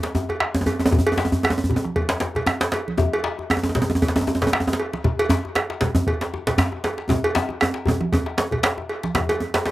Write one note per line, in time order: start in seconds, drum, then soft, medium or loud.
0.03 djembe slap medium
0.15 djembe tone medium
0.15 djembe bass medium
0.29 bombo rim soft
0.29 cowbell soft
0.29 djembe slap soft
0.29 djembe bass soft
0.40 bombo rim loud
0.40 djembe slap medium
0.55 bombo rim soft
0.55 djembe tone loud
0.55 djembe tone medium
0.61 djembe tone medium
0.66 cowbell medium
0.66 djembe slap soft
0.66 djembe bass medium
0.79 djembe slap soft
0.79 djembe tone medium
0.86 djembe tone loud
0.91 bombo low medium
0.91 djembe tone medium
0.91 djembe bass medium
0.91 low conga medium
0.99 djembe bass medium
1.07 cowbell medium
1.12 djembe tone medium
1.17 djembe slap medium
1.17 djembe tone medium
1.25 djembe tone medium
1.32 djembe tone medium
1.32 djembe bass medium
1.43 bombo rim loud
1.43 cowbell medium
1.43 djembe tone medium
1.43 high conga soft
1.50 djembe tone loud
1.58 djembe tone medium
1.64 djembe bass medium
1.70 djembe bass medium
1.70 low conga medium
1.76 djembe tone medium
1.84 bombo rim soft
1.84 djembe slap soft
1.84 djembe tone soft
1.84 high conga medium
1.96 bombo low medium
1.96 cowbell soft
2.09 djembe slap loud
2.09 djembe slap medium
2.20 djembe slap medium
2.20 djembe slap soft
2.20 djembe tone medium
2.35 bombo rim soft
2.35 cowbell soft
2.35 djembe slap soft
2.35 djembe bass medium
2.35 low conga medium
2.46 bombo rim loud
2.46 djembe slap medium
2.46 djembe tone medium
2.60 djembe slap loud
2.60 djembe tone medium
2.72 cowbell medium
2.72 djembe slap medium
2.88 high conga medium
2.97 bombo low medium
2.97 djembe tone medium
2.97 djembe bass medium
2.97 low conga medium
3.13 cowbell medium
3.24 djembe slap medium
3.39 djembe tone medium
3.50 bombo rim loud
3.50 cowbell soft
3.50 djembe tone loud
3.50 high conga soft
3.57 djembe tone medium
3.63 djembe slap medium
3.63 djembe tone medium
3.69 djembe tone medium
3.75 djembe slap medium
3.75 djembe bass medium
3.75 low conga medium
3.82 djembe tone loud
3.90 bombo rim soft
3.90 djembe slap soft
3.90 djembe tone medium
3.90 high conga medium
3.95 djembe tone medium
4.02 bombo low medium
4.02 cowbell soft
4.02 djembe tone medium
4.08 djembe slap medium
4.16 djembe slap medium
4.16 djembe tone loud
4.21 djembe tone medium
4.27 djembe slap soft
4.27 djembe tone medium
4.35 djembe tone medium
4.42 bombo rim soft
4.42 cowbell soft
4.42 djembe slap soft
4.42 djembe slap medium
4.42 djembe bass medium
4.42 low conga medium
4.47 djembe tone loud
4.53 bombo rim loud
4.53 djembe slap medium
4.53 djembe tone medium
4.60 djembe tone medium
4.67 bombo rim soft
4.67 djembe tone medium
4.73 djembe slap medium
4.80 cowbell medium
4.93 djembe slap soft
4.93 high conga medium
5.04 bombo low loud
5.04 djembe tone medium
5.04 djembe bass medium
5.04 low conga medium
5.19 cowbell medium
5.29 djembe slap medium
5.29 djembe bass loud
5.45 djembe tone medium
5.55 bombo rim loud
5.55 cowbell medium
5.55 djembe slap medium
5.55 high conga soft
5.70 djembe slap medium
5.81 djembe slap medium
5.81 djembe bass medium
5.81 low conga medium
5.95 bombo rim soft
5.95 djembe slap soft
5.95 high conga medium
5.95 djembe tone medium
5.95 djembe bass loud
6.07 bombo low loud
6.07 cowbell soft
6.21 djembe slap medium
6.34 djembe slap soft
6.34 djembe tone medium
6.47 bombo rim soft
6.47 cowbell medium
6.47 djembe slap medium
6.47 djembe slap soft
6.47 low conga medium
6.47 djembe bass medium
6.58 bombo rim loud
6.58 djembe slap medium
6.58 djembe bass loud
6.72 bombo rim soft
6.72 djembe tone medium
6.84 cowbell medium
6.84 djembe slap medium
6.98 djembe slap medium
7.09 bombo rim soft
7.09 bombo low medium
7.09 djembe tone medium
7.09 djembe tone loud
7.09 djembe bass medium
7.09 low conga medium
7.24 cowbell medium
7.35 bombo rim soft
7.35 djembe slap medium
7.35 high conga soft
7.35 djembe tone loud
7.49 djembe slap soft
7.49 djembe tone medium
7.49 high conga soft
7.60 bombo rim loud
7.60 cowbell medium
7.60 djembe slap soft
7.60 djembe tone loud
7.74 bombo rim soft
7.74 djembe slap medium
7.86 bombo rim soft
7.86 high conga soft
7.86 djembe tone loud
7.86 djembe bass medium
7.86 low conga medium
8.01 bombo rim soft
8.01 djembe slap soft
8.01 djembe tone medium
8.01 high conga medium
8.12 bombo low loud
8.12 cowbell medium
8.12 high conga soft
8.12 djembe tone loud
8.26 djembe slap medium
8.37 bombo rim soft
8.37 djembe slap loud
8.51 cowbell soft
8.51 high conga soft
8.51 djembe bass medium
8.51 low conga medium
8.63 bombo rim loud
8.63 djembe slap medium
8.63 djembe slap loud
8.78 bombo rim soft
8.78 djembe slap soft
8.78 djembe tone medium
8.89 cowbell soft
9.03 djembe slap medium
9.03 high conga medium
9.15 bombo rim medium
9.15 bombo low loud
9.15 djembe slap loud
9.15 djembe tone medium
9.15 djembe bass medium
9.15 low conga medium
9.29 cowbell medium
9.29 djembe slap medium
9.40 djembe slap soft
9.40 djembe tone medium
9.54 bombo rim medium
9.54 djembe slap loud
9.54 djembe tone medium
9.54 high conga soft
9.66 cowbell soft
9.66 djembe slap medium
9.66 high conga soft